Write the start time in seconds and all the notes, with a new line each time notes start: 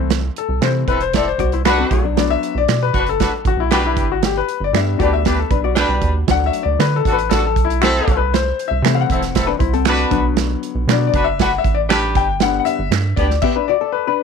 Already playing: C2 E3 A3 C4
0.10 snare, closed hi-hat
0.36 A4, closed hi-hat
0.49 C2
0.61 C3 E3 A3 C4 C5, finger snap, snare, closed hi-hat
0.87 E1 C4 E4 A4 B4, kick, closed hi-hat
1.00 C5, closed hi-hat
1.13 C4 E4 A4 D5, kick, snare, closed hi-hat
1.28 C5
1.38 C2 F#4 D5, kick, closed hi-hat
1.52 E4 C5, closed hi-hat
1.65 D4 F#4 B4, finger snap, snare, closed hi-hat
1.78 C4 A4
1.91 B1 A3 F#4, kick, closed hi-hat
2.04 F#3 D4
2.17 F#3 B3 D4 D5, snare, closed hi-hat
2.30 E5
2.43 closed hi-hat
2.55 B1 D5
2.68 B2, finger snap, snare, closed hi-hat
2.83 B4
2.93 F#1 D4 F#4 B4, kick, closed hi-hat
2.99 B4
3.07 A4, closed hi-hat
3.20 D4 F#4 B4, kick, snare, closed hi-hat
3.45 A1 F#4, kick, closed hi-hat
3.57 B1 E4
3.71 D4 F#4 G4 B4, finger snap, snare, closed hi-hat
3.86 E4
3.97 G1, kick, closed hi-hat
4.12 F#4
4.23 G4, snare, closed hi-hat
4.37 B4
4.49 closed hi-hat
4.60 G1 D5
4.73 G2 G3 B3 D4 E5, finger snap, snare, closed hi-hat
4.99 D2 A3 D4 F#4 G4 B4 D5, kick, closed hi-hat
5.13 E5
5.25 B3 D4 G4 B4, kick, snare, closed hi-hat
5.39 A4
5.50 B1 D4 B4, kick, closed hi-hat
5.64 F#4 D5
5.76 G3 D4 B4, finger snap, snare, closed hi-hat
5.89 C2
6.01 D#2, kick, closed hi-hat
6.27 D2 F#3 A3 D4 F#5, kick, snare, closed hi-hat
6.46 E5
6.53 closed hi-hat
6.63 D2 D5
6.79 D3 B4, finger snap, snare, closed hi-hat
6.96 A4
7.05 A1 D4 F#4 A4, kick, closed hi-hat
7.12 B4
7.19 closed hi-hat
7.30 D4 F#4 A4, kick, snare, closed hi-hat
7.47 A4
7.56 B1, kick, closed hi-hat
7.65 E4
7.70 closed hi-hat
7.82 C4 E4 F#4 A4, finger snap, snare, closed hi-hat
7.99 A4
8.08 C2, kick, closed hi-hat
8.17 B4
8.34 C5, snare, closed hi-hat
8.59 closed hi-hat
8.68 C2 E5
8.82 C3 E3 A3 C4, finger snap, snare, closed hi-hat
8.95 F5
9.01 F#5
9.10 E1 C4 E4 A4, kick, closed hi-hat
9.22 snare, closed hi-hat
9.35 C4 E4 A4, kick, snare, closed hi-hat
9.47 D4 B4
9.59 C2 E4 C5, kick, closed hi-hat
9.73 C4 A4, closed hi-hat
9.85 D4 F#4 B4, finger snap, snare, closed hi-hat
10.11 B1 D3 F#3 B3, kick, closed hi-hat
10.37 snare, closed hi-hat
10.63 closed hi-hat
10.75 B1
10.87 B2 D3 F#3 B3 D5, finger snap, snare, closed hi-hat
11.07 D5
11.14 F#1 D4 F#4 B4, kick, closed hi-hat
11.24 E5
11.39 D4 F#4 B4 F#5, kick, snare, closed hi-hat
11.58 E5
11.64 A1, kick, closed hi-hat
11.75 D5
11.88 D4 G4 B4, finger snap, snare, closed hi-hat
12.15 G1 G5, kick, closed hi-hat
12.40 D3 G3 B3 F#5, snare, closed hi-hat
12.60 F#5
12.65 E5, closed hi-hat
12.79 G1
12.91 G2, finger snap, snare, closed hi-hat
13.16 D2 B3 D4 G4 D5, kick, closed hi-hat
13.30 snare
13.42 B3 G4 E5, kick, crash
13.56 D4 B4
13.68 F#4 D5
13.81 A4
13.92 B4
14.07 D4 B4